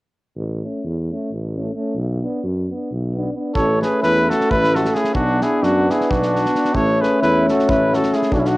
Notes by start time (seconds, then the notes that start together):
0.36 A1
0.61 A3 C#4
0.84 E2
1.10 A3 C#4
1.32 A1
1.55 A3 C#4
1.75 A3 C#4
1.95 B1
2.22 B3 D4
2.44 F#2
2.70 B3 D4
2.92 B1
3.14 B3 D4
3.34 B3 D4
3.54 A1 A3 C#4 A4 C#5, kick
3.82 G#4 B4, snare
4.01 E2 E4 B4, snare
4.29 F#4 A4, snare
4.40 snare
4.50 A1 E4 B4, kick
4.64 snare
4.75 F#4 A4, snare
4.85 snare
4.94 E4 G#4, snare
5.04 snare
5.14 B1 B3 D4 F#4, kick
5.41 E4 G#4, snare
5.62 F#2 D4 F#4, snare
5.90 E4 G#4, snare
6.01 snare
6.11 B1 D4 F#4, kick
6.23 snare
6.36 snare
6.45 snare
6.55 snare
6.65 snare
6.73 A1 A3 C#4 A4 C#5, kick
7.01 G#4 B4, snare
7.21 E2 E4 B4, snare
7.49 F#4 A4, snare
7.59 snare
7.69 A1 E4 B4, kick
7.93 F#4 A4, snare
8.03 snare
8.13 E4 G#4, snare
8.22 snare
8.31 B1 B3 D4 F#4, kick
8.39 C#4 E4
8.45 D4 F#4, snare